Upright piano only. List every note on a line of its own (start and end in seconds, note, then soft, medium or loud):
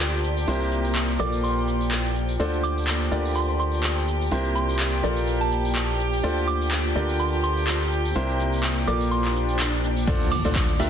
0.00 0.45 D3 medium
0.00 0.45 F4 medium
0.00 0.45 G4 medium
0.00 0.45 A#4 medium
0.00 0.45 D5 medium
0.48 1.17 C3 medium
0.48 1.17 E4 medium
0.48 1.17 G4 medium
0.48 1.17 A#4 medium
0.48 1.17 C5 medium
1.19 2.37 A#3 medium
1.19 2.37 F4 medium
1.19 2.37 A4 medium
1.19 2.37 A#4 medium
1.19 2.37 D5 medium
2.40 3.09 D3 medium
2.40 3.09 F4 medium
2.40 3.09 A4 medium
2.40 3.09 C5 medium
2.40 3.09 D5 medium
3.11 4.29 D3 medium
3.11 4.29 F4 medium
3.11 4.29 G4 medium
3.11 4.29 A#4 medium
3.11 4.29 D5 medium
4.32 5.01 C3 medium
4.32 5.01 E4 medium
4.32 5.01 G4 medium
4.32 5.01 A#4 medium
4.32 5.01 C5 medium
5.04 6.21 A#3 medium
5.04 6.21 F4 medium
5.04 6.21 A4 medium
5.04 6.21 A#4 medium
5.04 6.21 D5 medium
6.23 6.93 D3 medium
6.23 6.93 F4 medium
6.23 6.93 A4 medium
6.23 6.93 C5 medium
6.23 6.93 D5 medium
6.96 8.13 D3 medium
6.96 8.13 F4 medium
6.96 8.13 G4 medium
6.96 8.13 A#4 medium
6.96 8.13 D5 medium
8.16 8.85 C3 medium
8.16 8.85 E4 medium
8.16 8.85 G4 medium
8.16 8.85 A#4 medium
8.16 8.85 C5 medium
8.87 10.05 A#3 medium
8.87 10.05 F4 medium
8.87 10.05 A4 medium
8.87 10.05 A#4 medium
8.87 10.05 D5 medium
10.07 10.28 D3 loud
10.07 10.28 F4 medium
10.07 10.28 A4 medium
10.07 10.28 C5 medium
10.07 10.28 D5 loud
10.45 10.64 D3 medium
10.45 10.64 F4 medium
10.45 10.64 A4 medium
10.45 10.64 C5 medium
10.45 10.64 D5 loud
10.80 10.90 D3 loud
10.80 10.90 F4 medium
10.80 10.90 G4 medium
10.80 10.90 A#4 medium
10.80 10.90 E5 loud